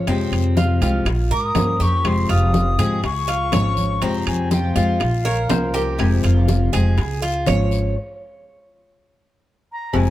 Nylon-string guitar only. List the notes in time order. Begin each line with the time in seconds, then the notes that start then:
0.08 C3 F3 G#3 C4 G4
0.81 F3 G#3 C4 G4
1.07 muted nylon-string guitar stroke
1.56 F3 A#3 C#4 F4
2.05 C3 F3 G#3 C4 G4
2.79 F3 G#3 C4 G4
3.03 muted nylon-string guitar stroke
3.52 F3 G#3 C#4 F4
4.01 C3 F3 G#3 C4 G4
4.75 F3 G#3 C4 G4
5.00 muted nylon-string guitar stroke
5.49 F3 A#3 C#4 F4
5.98 C3 F3 G#3 C4
6.72 F3 G#3 C4 G4
6.98 muted nylon-string guitar stroke
7.46 F3 G#3 C#4 F4
9.93 C3 F3 G#3 C4 G4